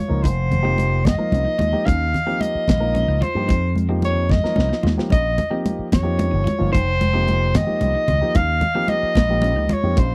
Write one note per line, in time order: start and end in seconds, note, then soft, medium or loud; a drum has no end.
0.00 0.16 F4 medium
0.00 0.24 C#5 medium
0.08 0.24 C#2 medium
0.08 0.23 F3 medium
0.08 0.24 A#3 medium
0.08 0.24 D#4 medium
0.08 0.24 A#4 medium
0.23 1.02 F1 loud
0.23 0.44 D#4 medium
0.23 1.07 C5 loud
0.23 kick medium
0.23 closed hi-hat medium
0.23 muted conga medium
0.51 closed hi-hat medium
0.51 high conga medium
0.51 low conga medium
0.62 1.00 F3 medium
0.62 1.00 A#3 medium
0.62 0.84 C4 medium
0.62 1.00 D#4 medium
0.62 1.00 G4 medium
0.78 closed hi-hat medium
0.78 muted conga medium
0.78 low conga soft
1.05 1.19 F1 loud
1.05 1.87 D#5 loud
1.05 kick medium
1.05 snare loud
1.05 closed hi-hat loud
1.05 high conga medium
1.05 low conga medium
1.18 1.54 F3 medium
1.18 1.54 A#3 medium
1.18 1.55 D#4 medium
1.18 1.55 A#4 medium
1.18 muted slap bass stroke soft
1.18 low conga soft
1.32 1.45 C2 medium
1.32 1.42 C#4 medium
1.32 closed hi-hat medium
1.32 muted conga medium
1.45 1.55 D#4 medium
1.58 1.73 D#2 medium
1.58 1.78 F4 medium
1.58 closed hi-hat medium
1.58 high conga medium
1.58 low conga medium
1.73 1.87 F3 medium
1.73 1.87 A#3 medium
1.73 1.87 D#4 medium
1.73 1.87 G4 medium
1.85 2.13 D#2 loud
1.85 2.05 C#4 medium
1.85 2.42 F5 loud
1.85 kick loud
1.85 closed hi-hat medium
1.85 muted conga medium
2.14 closed hi-hat medium
2.14 low conga medium
2.26 2.63 F3 medium
2.26 2.63 A#3 medium
2.26 2.47 C4 medium
2.26 2.63 D#4 medium
2.26 2.63 G4 medium
2.41 3.24 D#5 loud
2.41 closed hi-hat medium
2.41 muted conga medium
2.41 low conga soft
2.55 muted slap bass stroke soft
2.68 3.07 A#1 medium
2.68 kick medium
2.68 snare loud
2.68 closed hi-hat medium
2.68 high conga medium
2.68 low conga medium
2.80 3.17 F3 medium
2.80 3.17 A#3 medium
2.80 3.17 D#4 medium
2.80 3.17 A#4 medium
2.80 low conga soft
2.94 3.04 C#4 medium
2.94 closed hi-hat medium
2.94 muted conga medium
3.08 3.21 C#2 medium
3.08 3.18 D#4 medium
3.21 3.41 F4 medium
3.21 3.77 C5 medium
3.21 muted slap bass stroke soft
3.21 closed hi-hat medium
3.21 high conga medium
3.21 low conga medium
3.35 3.48 G2 medium
3.35 3.49 F3 medium
3.35 3.50 A#3 medium
3.35 3.49 D#4 medium
3.35 3.50 G4 medium
3.48 4.27 F2 loud
3.48 3.68 D#4 medium
3.48 kick loud
3.48 closed hi-hat medium
3.48 muted conga medium
3.76 closed hi-hat medium
3.76 high conga medium
3.89 4.25 F3 medium
3.89 4.25 A#3 medium
3.89 4.09 C4 medium
3.89 4.25 D#4 medium
3.89 4.25 G4 medium
4.02 4.33 C#5 medium
4.02 closed hi-hat medium
4.02 muted conga medium
4.16 low conga soft
4.29 4.44 F2 medium
4.29 4.92 D#5 loud
4.29 kick medium
4.29 snare medium
4.29 high conga medium
4.29 low conga medium
4.43 4.79 F3 medium
4.43 4.79 A#3 medium
4.43 4.79 D#4 medium
4.43 4.79 A#4 medium
4.43 muted slap bass stroke soft
4.43 snare medium
4.56 4.71 C2 medium
4.56 4.66 C#4 medium
4.56 snare medium
4.56 muted conga loud
4.69 4.79 D#4 medium
4.69 snare medium
4.83 4.97 D#2 medium
4.83 5.03 F4 medium
4.83 snare medium
4.83 high conga loud
4.83 low conga medium
4.97 5.11 F3 medium
4.97 5.11 A#3 medium
4.97 5.11 D#4 medium
4.97 5.11 G4 medium
4.97 snare medium
5.10 5.37 A#1 loud
5.10 5.30 C#4 medium
5.10 5.62 D#5 loud
5.10 kick loud
5.10 closed hi-hat medium
5.10 muted conga medium
5.38 closed hi-hat medium
5.38 high conga medium
5.38 low conga medium
5.50 5.87 F3 medium
5.50 5.87 A#3 medium
5.50 5.71 C4 medium
5.50 5.87 D#4 medium
5.50 5.87 G4 medium
5.66 closed hi-hat medium
5.66 muted conga loud
5.66 low conga soft
5.79 muted slap bass stroke soft
5.92 6.31 F2 medium
5.92 6.70 C#5 medium
5.92 kick medium
5.92 snare loud
5.92 closed hi-hat loud
5.92 high conga loud
5.92 low conga medium
6.03 6.40 F3 medium
6.03 6.40 A#3 medium
6.03 6.41 D#4 medium
6.03 6.40 G4 medium
6.03 low conga soft
6.19 6.29 C#4 medium
6.19 closed hi-hat medium
6.19 muted conga loud
6.31 6.46 G1 medium
6.31 6.42 D#4 medium
6.44 6.64 F4 medium
6.44 muted slap bass stroke soft
6.44 closed hi-hat medium
6.44 high conga medium
6.44 low conga medium
6.59 6.73 G1 medium
6.59 6.73 F3 medium
6.59 6.73 A#3 medium
6.59 6.73 D#4 medium
6.59 6.73 F4 medium
6.72 7.51 F1 loud
6.72 6.92 D#4 medium
6.72 7.58 C5 loud
6.72 kick loud
6.72 closed hi-hat medium
6.72 muted conga medium
7.01 closed hi-hat medium
7.01 high conga medium
7.01 low conga medium
7.13 7.49 F3 medium
7.13 7.49 A#3 medium
7.13 7.33 C4 medium
7.13 7.49 D#4 medium
7.13 7.49 G4 medium
7.28 closed hi-hat medium
7.28 muted conga medium
7.55 7.68 F1 medium
7.55 8.37 D#5 loud
7.55 kick medium
7.55 snare loud
7.55 closed hi-hat loud
7.55 high conga loud
7.55 low conga loud
7.66 8.03 F3 medium
7.66 8.03 A#3 medium
7.66 8.03 D#4 medium
7.66 8.03 G4 medium
7.66 muted slap bass stroke soft
7.66 low conga soft
7.81 7.94 C2 medium
7.81 7.91 C#4 medium
7.81 closed hi-hat medium
7.81 muted conga loud
7.95 8.05 D#4 medium
8.08 8.21 C#2 medium
8.08 8.28 F4 medium
8.08 closed hi-hat medium
8.08 high conga medium
8.08 low conga medium
8.21 8.35 F3 medium
8.21 8.36 A#3 medium
8.21 8.35 D#4 medium
8.21 8.35 G4 medium
8.35 8.61 D#2 medium
8.35 8.55 C#4 medium
8.35 8.91 F5 loud
8.35 kick loud
8.35 closed hi-hat medium
8.35 muted conga medium
8.61 closed hi-hat medium
8.61 high conga medium
8.61 low conga medium
8.75 9.11 F3 medium
8.75 9.11 A#3 medium
8.75 8.94 C4 medium
8.75 9.11 D#4 medium
8.75 9.11 G4 medium
8.88 9.75 D#5 loud
8.88 closed hi-hat medium
8.88 muted conga medium
8.88 low conga soft
9.03 muted slap bass stroke soft
9.15 9.55 A#1 loud
9.15 kick medium
9.15 snare loud
9.15 closed hi-hat medium
9.15 high conga loud
9.15 low conga loud
9.29 9.65 F3 medium
9.29 9.66 A#3 medium
9.29 9.65 D#4 medium
9.29 9.66 G4 medium
9.29 low conga soft
9.42 9.53 C#4 medium
9.42 closed hi-hat medium
9.42 muted conga loud
9.56 9.70 C#2 medium
9.56 9.66 D#4 medium
9.69 9.90 F4 medium
9.69 muted slap bass stroke soft
9.69 closed hi-hat medium
9.69 high conga medium
9.69 low conga loud
9.73 10.01 C#5 medium
9.83 9.97 F2 medium
9.83 9.98 F3 medium
9.83 9.97 A#3 medium
9.83 9.97 D#4 medium
9.83 9.98 G4 medium
9.97 10.15 A#1 loud
9.97 10.15 C#4 medium
9.97 10.15 C5 loud
9.97 kick loud
9.97 closed hi-hat medium
9.97 muted conga medium
10.11 low conga soft